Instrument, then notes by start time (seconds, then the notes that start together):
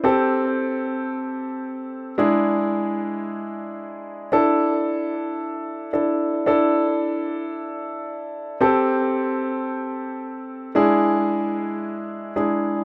grand piano
0.04 C4 G4 A4
2.18 G#3 D4 E4 G#4
4.32 D4 E4 A4
5.93 D4 E4 A4
6.46 D4 E4 A4
8.61 C4 G4 A4
10.75 G#3 D4 E4 G#4
12.36 G#3 D4 E4 G#4